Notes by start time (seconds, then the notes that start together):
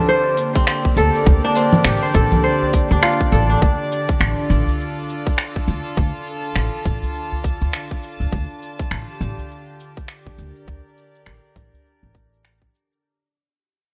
Already playing: D3 C4 D4 F4 G4 A4
0.09 G4 C5, shaker
0.35 A#3, open hi-hat, shaker
0.55 C4, kick, shaker
0.67 C4, finger snap, shaker
0.85 kick, udu
0.97 D2 A4, open hi-hat, shaker
1.04 D5
1.15 shaker
1.26 D2, kick, shaker
1.45 D4
1.55 C4, open hi-hat, shaker
1.73 low conga, shaker
1.85 A1 G4, finger snap, shaker
2.03 C5
2.14 A1 A4, kick, open hi-hat, shaker
2.32 udu, low conga, shaker
2.44 C5, shaker
2.62 udu
2.73 kick, open hi-hat, udu, shaker
2.91 D2 D4, shaker
3.03 F4, finger snap, shaker
3.21 kick
3.32 A1 A4, open hi-hat, shaker
3.50 D4, shaker
3.62 D2, kick, shaker
3.92 shaker
4.03 A4
4.09 kick, shaker
4.19 A1 F4, finger snap, shaker
4.50 A1, shaker
4.67 udu, shaker
4.80 shaker
5.10 shaker
5.27 kick, shaker
5.38 finger snap, shaker
5.46 A5
5.56 kick, udu
5.68 D2, shaker
5.86 shaker
5.97 D2, kick, shaker
6.27 shaker
6.44 shaker
6.56 A1, finger snap, shaker
6.86 A1, kick, shaker
7.02 udu, shaker
7.15 shaker
7.32 udu
7.44 kick, udu, shaker
7.62 D2, shaker
7.73 finger snap, shaker
7.91 kick
8.03 shaker
8.20 D2, shaker
8.32 D2 D3, kick, shaker
8.63 shaker
8.79 kick, shaker
8.91 A1, finger snap, shaker
9.09 G4
9.21 A1, shaker
9.38 udu, shaker
9.51 shaker
9.80 shaker
9.97 kick, shaker
10.08 finger snap, shaker
10.26 kick, udu
10.35 D2 A#4, shaker
10.44 D5
10.56 shaker
10.68 D2, kick, shaker
10.97 shaker
11.15 shaker
11.26 A1, finger snap, shaker
11.56 A1, kick, shaker
11.73 udu, shaker
11.87 shaker
12.03 A1, udu
12.14 kick, udu, shaker
12.34 shaker
12.45 finger snap, shaker
12.62 kick
12.75 shaker
12.93 shaker